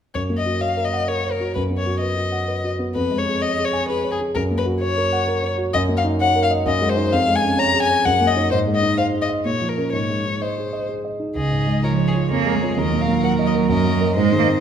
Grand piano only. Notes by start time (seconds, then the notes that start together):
0.15 F#2
0.30 A#3
0.46 F#4
0.61 C#5
0.77 A#4
0.93 F#5
1.09 A#4
1.25 C#5
1.40 F#4
1.56 F#2
1.70 B3
1.86 F#4
2.01 B4
2.16 F#4
2.32 F#5
2.48 B4
2.64 F#4
2.79 B3
2.95 F2
3.11 G#3
3.26 G#4
3.42 C#5
3.58 G#4
3.73 G#5
3.89 G#4
4.04 C#5
4.20 G#4
4.35 F#2
4.51 A#3
4.66 F#4
4.82 C#5
4.97 A#4
5.12 F#5
5.27 A#4
5.43 C#5
5.58 F#4
5.74 F#2
5.89 A#3
6.04 D#4
6.21 C#5
6.35 A#4
6.51 D#5
6.66 F#2
6.81 G#3
6.97 D#4 C5
7.12 F2
7.28 G#3
7.43 C#4
7.58 C#5
7.74 G#4
7.90 C#5
8.05 F#2
8.21 A#3
8.37 D#4 C#5
8.52 G#2
8.67 G#3
8.83 D#4
8.98 C5
9.14 G#4
9.29 D#5
9.45 A#2
9.62 F3
9.77 C#4 A#4
9.93 G#2
10.09 G#3
10.26 D#4
10.42 D#5
10.57 G#4
10.73 D#5
10.89 G#4
11.05 D#5
11.20 D#4
11.35 C#2
11.51 G#2
11.67 G#3
11.82 F4
11.98 C#5
12.14 F4
12.31 F2
12.46 G#3
12.62 F4 C#5
12.77 D#2
12.93 A#2
13.08 A#3
13.24 A#4
13.39 D#5
13.55 A#4
13.69 F#2
13.85 A#3
14.01 A#4 D#5
14.16 G#2
14.32 D#3
14.46 C4